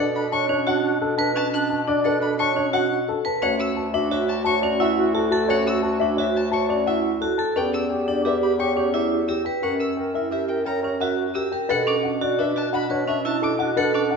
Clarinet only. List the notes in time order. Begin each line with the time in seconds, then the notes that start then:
0.15 D4
0.33 D4
0.49 D4
0.66 D4
0.83 D4
1.00 D4
1.17 D4
1.34 D4
1.53 D4
1.69 D4
1.87 D4
2.04 D4
2.20 D4
2.38 D4
2.55 D4
2.72 D4
2.89 D4
3.07 D4
3.41 F#4
3.58 F#4
3.76 F#4
3.94 F#4
4.11 F#4
4.29 F#4
4.45 F#4
4.63 F#4
4.81 F#4
4.98 F#4
5.15 F#4
5.31 F#4
5.50 F#4
5.67 F#4
5.84 F#4
6.00 F#4
6.18 F#4
6.36 F#4
6.52 F#4
6.69 F#4
6.87 F#4
7.05 F#4
7.21 F#4
7.56 G4
7.73 G4
7.91 G4
8.08 G4
8.24 G4
8.42 G4
8.59 G4
8.76 G4
8.94 G4
9.11 G4
9.29 G4
9.63 A#4
9.80 A#4
9.97 A#4
10.14 A#4
10.30 A#4
10.49 A#4
10.66 A#4
10.83 A#4
11.00 A#4
11.18 A#4
11.36 A#4
11.69 D4
11.86 D4
12.03 D4
12.21 D4
12.38 D4
12.55 D4
12.73 D4
12.90 D4
13.07 D4
13.25 D4
13.42 D4
13.60 D4
13.77 D4
13.94 D4
14.11 D4